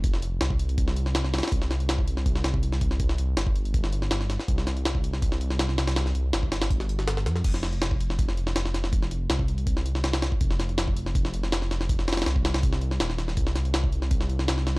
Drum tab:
CC |--------------------------------|--------------------------------|--------------------------------|--------------------------------|
HH |x---x---x---x-x-x---x---x---xxxx|x---x-x-x---x---x---x---x---x---|x---x---x---x-x-x---x---x---x---|x---x-x-x---x---x---x---x---x-x-|
SD |--o-----o---------o---o-o-o-oooo|--o-o---o-----o---o-o-----o---o-|--o-----o---------o---o-o-o-o-o-|--o-o---o-----o---o---o-o-o-o-o-|
BD |o---------o-----o---------------|o---------o-----o-----o-----o---|o---------o-----o---------------|o---------o-----o---------------|

CC |--------------------------------|x-------------------------------|--------------------------------|--------------------------------|
HH |x---x---x---x-x-x---x---x---x---|x---x-x-x---x---x---x---x---x---|x---x---x---x-x-x---x---x-x-x---|x---x-x-x---x---x---x---x---x---|
SD |o-o-----o---o-o---o---o-o-o-o-o-|--o-o---o-----o---o---o-o-o-o-o-|--o-----o---------o---o-o-o-o---|--o-o---o-----o---o---o-o-o-o-o-|
BD |----------o-----o---------------|o---------o-----o---------------|o---------o-----o-------------o-|o---------o-----o---------------|

CC |--------------------------------|--------------------------------|
HH |x---xxxxx---x-x-x---x---x---x---|x---x-x-x---x---x---x---x---x---|
SD |--o-ooooo---o-o---o---o-o-o-o-o-|--o-o---o-----o---o---o-o-o-o---|
BD |o---------o-----o---------------|o---------o-----o---------------|